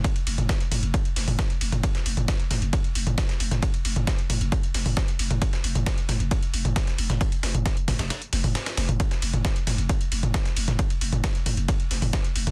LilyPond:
<<
  \new Staff \with { instrumentName = "808-style bass" } { \clef bass \time 4/4 \key c \phrygian \tempo 4 = 134 r8 f,,16 f,,16 r8 f,,16 f,,16 r8 f,,16 f,,16 r8 f,,16 f,,16 | r8 f,,16 f,,16 r8 f,,16 f,,16 r8 f,,16 f,,16 r8 f,,16 f,,16 | r8 f,,16 f,,16 r8 f,,16 f,,16 r8 f,,16 f,,16 r8 f,,16 f,,16 | r8 f,,16 f,,16 r8 f,,16 f,,16 r8 f,,16 f,,16 r8 f,,16 f,,16 |
r8 f,,16 f,,16 r8 f,,16 f,,16 r8 f,,16 f,,16 r8 f,,16 f,,16 | r8 f,,16 f,,16 r8 f,,16 f,,16 r8 f,,16 f,,16 r8 f,,16 f,,16 | r8 f,,16 f,,16 r8 f,,16 f,,16 r8 f,,16 f,,16 r8 f,,16 f,,16 | }
  \new DrumStaff \with { instrumentName = "Drums" } \drummode { \time 4/4 <hh bd cymr>16 <hh cymr>16 <hho cymr>16 <hh toml>16 <hh bd cymr sn>16 hh16 <hho cymr toml>16 hh16 <hh bd cymr>16 hh16 <hho cymr sn>16 <hho toml>16 <hh bd cymr sn>16 hh16 <hho cymr>16 <hh cymr toml>16 | <hh bd cymr>16 <hh sn>16 <hho cymr>16 <hh toml>16 <hh bd cymr sn>16 hh16 <hho cymr sn toml>16 hh16 <hh bd cymr>16 hh16 <hho cymr>16 <hh toml>16 <hh bd cymr sn>16 <hh sn>16 <hho cymr>16 <hh sn toml>16 | <hh bd cymr>16 <hh cymr>16 <hho cymr>16 <hh toml>16 <hh bd cymr sn>16 hh16 <hho cymr toml>16 hh16 <hh bd cymr>16 hh16 <hho cymr sn>16 <hho toml>16 <hh bd cymr sn>16 hh16 <hho cymr>16 <hh cymr toml>16 | <hh bd cymr>16 <hh sn>16 <hho cymr>16 <hh toml>16 <hh bd cymr sn>16 hh16 <hho cymr sn toml>16 hh16 <hh bd cymr>16 hh16 <hho cymr>16 <hh toml>16 <hh bd cymr sn>16 <hh sn>16 <hho cymr>16 <hh sn toml>16 |
<hh bd cymr>16 <hh cymr>16 <hho cymr sn>16 <hh toml>16 <hh bd cymr sn>16 hh16 <hho bd cymr sn toml>16 <hh cymr sn>16 <hh cymr sn>16 hh16 <hho cymr sn>16 <hho toml>16 <hh cymr sn>16 <hh cymr sn>16 <hho cymr sn>16 <hh toml>16 | <hh bd cymr>16 <hh sn>16 <hho cymr>16 <hh toml>16 <hh bd cymr sn>16 hh16 <hho cymr sn toml>16 hh16 <hh bd cymr>16 hh16 <hho cymr>16 <hh toml>16 <hh bd cymr sn>16 <hh sn>16 <hho cymr>16 <hh sn toml>16 | <hh bd cymr>16 <hh cymr>16 <hho cymr>16 <hh toml>16 <hh bd cymr sn>16 hh16 <hho cymr toml>16 hh16 <hh bd cymr>16 hh16 <hho cymr sn>16 <hho toml>16 <hh bd cymr sn>16 hh16 <hho cymr>16 <hh cymr toml>16 | }
>>